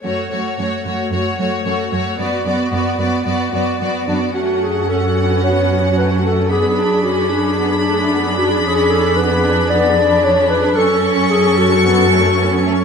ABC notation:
X:1
M:4/4
L:1/8
Q:1/4=112
K:F#m
V:1 name="Violin section"
c c c c c c c c | d d d d d d d d | f8 | b8- |
b8 | c'8 |]
V:2 name="Clarinet"
z8 | z6 z D | F G A2 c2 B A | G2 F D4 F |
_A =A _c2 d2 ^c _c | A z G F4 z |]
V:3 name="Violin section"
F F F F F F F F | F F F F F F F F | A,2 C B,3 A,2 | B, D C2 B, A, B, D |
C2 _C D C D3 | C4 B, A, B, A, |]
V:4 name="Viola section"
A, A, A, A, A, A, A, A, | B, B, B, B, B, B, B, B, | [CF]8 | [DG]8- |
[DG]8 | [CA]8 |]
V:5 name="Cello section" clef=bass
F,, F,, F,, F,, F,, F,, F,, F,, | F,, F,, F,, F,, F,, F,, F,, F,, | F,,8- | F,,8 |
=F,,8 | F,,8 |]